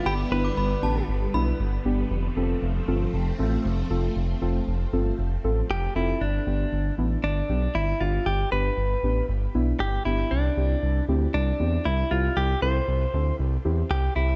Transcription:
X:1
M:4/4
L:1/16
Q:1/4=117
K:Gmix
V:1 name="Synth bell"
b2 z d' b2 a z3 b z4 z | z16 | z16 | z16 |
z16 | z16 | z16 |]
V:2 name="Clean electric guitar"
G2 B6 z8 | z16 | z12 G2 E2 | D6 z2 D4 E2 F2 |
G2 B6 z4 G2 E2 | D6 z2 D4 E2 F2 | G2 c6 z4 G2 E2 |]
V:3 name="Synth keys"
z2 [B,DE]2 z2 [B,DG]2 z2 [B,DE]2 z2 [B,DG]2 | z2 [CFA]2 z2 [CFA]2 z2 [CFA]2 z2 [CFA]2 | z2 [CFA]2 z2 [CFA]2 z2 [CFA]2 z2 [CFA]2 | z2 [B,DG]2 z2 [B,DE]2 z2 [B,DG]2 z2 [B,DG]2 |
z2 [B,DG]2 z2 [B,DG]2 z2 [B,DE]2 z2 [B,DG]2 | z2 [CEG]2 z2 [CEG]2 z2 [CEG]2 z2 [CEG]2 | z2 [CEA]2 z2 [CEA]2 z2 [CEG]2 z2 [CEG]2 |]
V:4 name="String machine" clef=bass
[D,G,B,]16 | [F,A,C]16- | [F,A,C]16 | z16 |
z16 | z16 | z16 |]
V:5 name="Analog synth bass" clef=bass
G,,,2 G,,,2 G,,,2 A,,,2 G,,,2 B,,,2 G,,,2 G,,,2 | F,,,2 F,,,2 F,,,2 G,,,2 F,,,2 A,,,2 F,,,2 F,,,2 | F,,,2 F,,,2 F,,,2 G,,,2 F,,,2 A,,,2 F,,,2 F,,,2 | G,,,2 G,,,2 G,,,2 A,,,2 G,,,2 B,,,2 G,,,2 G,,,2 |
G,,,2 G,,,2 G,,,2 A,,,2 G,,,2 B,,,2 G,,,2 G,,,2 | C,,2 C,,2 C,,2 D,,2 C,,2 E,,2 C,,2 C,,2 | C,,2 C,,2 C,,2 D,,2 C,,2 E,,2 C,,2 C,,2 |]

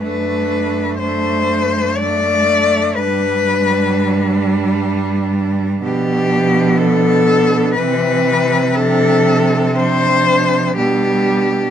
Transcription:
X:1
M:3/4
L:1/8
Q:1/4=61
K:G
V:1 name="Cello"
B2 c2 d2 | B4 z2 | [K:Gmix] G2 A2 B2 | A2 c2 G2 |]
V:2 name="Cello"
D2 D2 D2 | D6 | [K:Gmix] D4 C2 | D2 D2 D2 |]
V:3 name="Cello" clef=bass
A,2 A,2 A,2 | G,6 | [K:Gmix] F,4 E,2 | F,2 F,2 G,2 |]
V:4 name="Cello" clef=bass
F,,6 | G,,6 | [K:Gmix] B,,4 C,2- | C,4 B,,2 |]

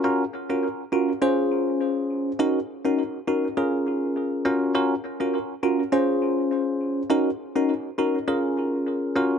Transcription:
X:1
M:4/4
L:1/16
Q:"Swing 16ths" 1/4=102
K:Ebdor
V:1 name="Tine electric piano"
[DFGB] z2 [DFGB] z2 [DFGB] z [DFAc]6- [DFAc] z | [DEGB] z2 [DEGB] z2 [DEGB] z [DFAB]6 [DFGB]2 | [DFGB] z2 [DFGB] z2 [DFGB] z [DFAc]6- [DFAc] z | [DEGB] z2 [DEGB] z2 [DEGB] z [DFAB]6 [DFGB]2 |]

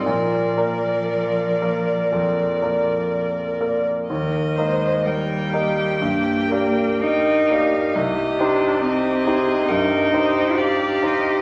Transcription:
X:1
M:4/4
L:1/8
Q:1/4=63
K:Bbmix
V:1 name="Violin"
d8 | e2 g4 g f | e2 e2 g2 f2 |]
V:2 name="Viola"
B8 | B c B G G B B2 | G2 G A B c d e |]
V:3 name="Grand piano"
B,, [B,Bd]2 [B,Bd] F,, [B,Bd]2 [B,Bd] | E,, [B,Be]2 [B,Be] G,, [B,Gd]2 [B,Gd] | C,, [EGc]2 [EGc] G,, [EGc]2 [EGc] |]
V:4 name="Cello"
F,6 z2 | z A, G,2 B,2 E2 | z D C2 E2 G2 |]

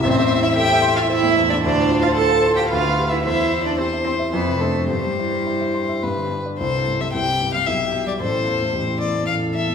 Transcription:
X:1
M:3/4
L:1/16
Q:1/4=111
K:C
V:1 name="Violin"
e12 | c8 B4 | c4 c4 c4 | c8 B2 z2 |
c3 e g3 f e3 d | c6 d2 f2 e2 |]
V:2 name="Violin"
c3 e g3 f e3 d | d3 f a3 g f3 e | e3 d c2 c2 B2 A2 | G8- G2 z2 |
A4 G4 G4 | A2 A2 G2 A6 |]
V:3 name="Cello"
C3 E G3 F E3 D | D3 F A3 G F3 E | E3 D C2 C2 B,2 A,2 | G,8- G,2 z2 |
z4 E4 G4 | A2 F2 E4 A4 |]
V:4 name="Grand piano"
A,,, E,, E c A e c' e c A, E,, A, | D,, A,, F c A f c' f D,, D, G B | E,, E, E c G e c' e F,, C, D c | G,, G, E c E e c' e G,, D, D d |
C,, E G,, G, C,, E G,, G, B,,, G B,, G, | A,,, E E,, A, A,,, E E,, A, A,,, E E,, A, |]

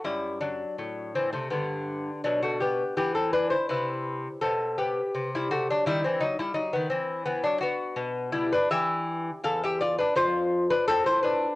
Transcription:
X:1
M:4/4
L:1/16
Q:1/4=83
K:Em
V:1 name="Lute"
[G,E]2 [F,D]4 [E,C] [C,A,] [D,B,]4 [F,D] [A,F] [B,G]2 | [B,G] [CA] [DB] [Ec] [EB]4 [CA]2 [B,G]3 [G,E] [A,F] [F,D] | [G,E] [E,C] [_G,_E] [=G,=E] [_G,_E] [_E,B,] [=E,C]2 [E,B,] [F,D] [B,F]4 [=G,=E] [DB] | [K:Ephr] [Ge]4 [Af] [Ge] [Fd] [DB] [Fc]3 [DB] [CA] [Ec] [DB]2 |]
V:2 name="Lute" clef=bass
F,,4 A,,4 G,,4 B,,4 | E,4 C,4 B,,4 C,4 | _E,4 z8 B,,4 | [K:Ephr] E,4 E,,4 F,,4 A,,4 |]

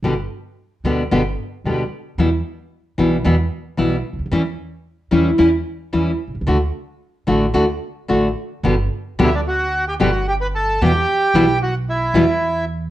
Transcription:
X:1
M:4/4
L:1/16
Q:1/4=112
K:G
V:1 name="Bandoneon"
z16 | z16 | z16 | z16 |
z4 [Ee] [Dd] [Ff]3 [Gg] [Ff]2 [Gg] [Bb] [Aa]2 | [Gg]6 [Ff]2 [Ee]6 z2 |]
V:2 name="Nylon-string guitar" clef=bass
[B,,D,G,B,G]2 z4 [B,,D,G,B,G]2 [B,,D,G,B,G]2 z2 [B,,D,G,B,G]2 z2 | [B,,E,G,B,E]2 z4 [B,,E,G,B,E]2 [B,,E,G,B,E]2 z2 [B,,E,G,B,E]2 z2 | [E,G,^CE]2 z4 [E,G,CE]2 [E,G,CE]2 z2 [E,G,CE]2 z2 | [D,A,DF]2 z4 [D,A,DF]2 [D,A,DF]2 z2 [D,A,DF]2 z2 |
[B,,D,G,B,G]2 z2 [B,,D,G,B,G]2 z4 [B,,D,G,B,G]2 z4 | [B,,E,G,B,E]2 z2 [B,,E,G,B,E]2 z4 [B,,E,G,B,E]2 z4 |]
V:3 name="Upright bass" clef=bass
G,,,3/2 z4 z/2 D,,3/2 z/2 G,,,3/2 z2 z/2 D,,3/2 z2 z/2 | E,,3/2 z4 z/2 B,,,3/2 z/2 E,,3/2 z2 z/2 B,,,3/2 z ^C,,/2 D,,/2 _E,,/2 | E,,3/2 z4 z/2 E,,3/2 z/2 E,,3/2 z2 z/2 E,,3/2 z B,,,/2 C,,/2 ^C,,/2 | D,,3/2 z4 z/2 A,,,3/2 z/2 D,,3/2 z2 z/2 A,,,3/2 z2 z/2 |
G,,,3/2 z2 z/2 D,,4- D,,3/2 z/2 G,,,4- G,,,3/2 z/2 | E,,3/2 z2 z/2 B,,,4- B,,,3/2 z/2 E,,4- E,,3/2 z/2 |]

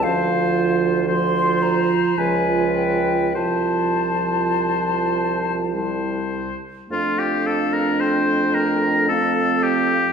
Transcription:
X:1
M:3/4
L:1/16
Q:1/4=54
K:F
V:1 name="Flute"
f3 z c'2 b2 _a2 g2 | a8- a2 z2 | f4 g4 f4 |]
V:2 name="Oboe"
c4 c4 _c4 | c8 c2 z2 | F G A B c2 B2 A2 G2 |]
V:3 name="Clarinet"
F4 F4 F4 | F8 E2 z2 | D8 C4 |]
V:4 name="French horn" clef=bass
F,4 F,4 F,4 | F,8 G,2 z2 | A,12 |]
V:5 name="Bassoon" clef=bass
D,,8 _D,,4 | C,,8- C,,2 z2 | F,,12 |]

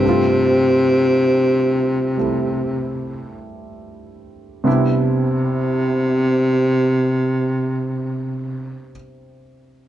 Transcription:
X:1
M:4/4
L:1/8
Q:"Swing" 1/4=46
K:C
V:1 name="Grand piano"
[G,,G,A,CF]4 [G,A,E]4 | [C,G,B,DE]8 |]
V:2 name="Baritone saxophone" clef=bass
C,6 z2 | C,8 |]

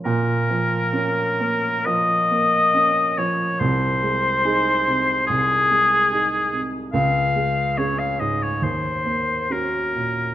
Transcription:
X:1
M:4/4
L:1/16
Q:1/4=70
K:Bbm
V:1 name="Oboe"
B8 e6 d2 | c8 A6- A z | f4 d f e d c4 B4 |]
V:2 name="Grand piano"
B,,2 F,2 [DB]2 B,2 F,2 B,2 [DB]2 F,2 | C,,2 A,2 [EA]2 C,2 C,,2 A,2 [EA]2 C,2 | D,,2 A,2 [DA]2 A,,2 E,,2 B,2 [DG]2 B,,2 |]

